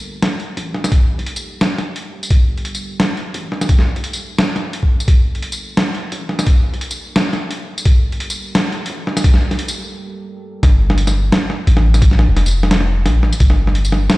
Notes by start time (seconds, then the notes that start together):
Already playing: G1 G3 G4 A4 A#4
0.22 snare, closed hi-hat
0.40 closed hi-hat
0.57 A1, closed hi-hat
0.74 snare
0.84 snare, tambourine
0.92 kick, closed hi-hat
1.19 F1, closed hi-hat
1.26 closed hi-hat
1.36 tambourine
1.61 snare, closed hi-hat
1.78 snare, closed hi-hat
1.96 closed hi-hat
2.23 tambourine
2.30 G1, kick, closed hi-hat
2.58 closed hi-hat
2.65 closed hi-hat
2.75 tambourine
3.00 snare, closed hi-hat
3.17 closed hi-hat
3.34 A1, closed hi-hat
3.52 snare
3.61 snare, tambourine
3.69 kick, closed hi-hat
3.79 snare
3.96 F1, closed hi-hat
4.04 closed hi-hat
4.13 tambourine
4.39 snare, closed hi-hat
4.56 snare, closed hi-hat
4.73 A#1, closed hi-hat
4.83 kick
4.91 A1
5.00 tambourine
5.08 G1, kick, closed hi-hat
5.35 closed hi-hat
5.42 closed hi-hat
5.52 tambourine
5.77 snare, closed hi-hat
5.95 closed hi-hat
6.12 A1, closed hi-hat
6.29 snare
6.39 snare, tambourine
6.46 kick, closed hi-hat
6.74 F1, closed hi-hat
6.81 closed hi-hat
6.91 tambourine
7.16 snare, closed hi-hat
7.33 snare, closed hi-hat
7.51 closed hi-hat
7.78 tambourine
7.85 G1, kick, closed hi-hat
8.12 closed hi-hat
8.20 closed hi-hat
8.30 tambourine
8.55 snare, closed hi-hat
8.72 closed hi-hat
8.86 A1, closed hi-hat
9.07 snare
9.17 snare, tambourine
9.24 kick, closed hi-hat
9.34 snare
9.51 F1, snare, closed hi-hat
9.59 closed hi-hat
9.68 tambourine
10.63 G1, kick, snare, closed hi-hat
10.90 snare
10.98 closed hi-hat
11.07 snare, tambourine
11.32 snare, closed hi-hat
11.50 snare
11.67 A1, closed hi-hat
11.77 snare
11.94 snare, closed hi-hat, tambourine
12.02 kick, closed hi-hat
12.11 snare
12.19 snare
12.29 F1
12.37 snare, closed hi-hat
12.46 tambourine
12.48 tambourine
12.51 tambourine
12.63 snare
12.71 snare, closed hi-hat
12.81 snare
13.06 A#1, snare, closed hi-hat
13.23 A1, snare
13.32 closed hi-hat, tambourine
13.40 G1, kick, closed hi-hat
13.50 snare
13.67 snare
13.75 closed hi-hat
13.85 tambourine
13.92 snare
14.10 snare, closed hi-hat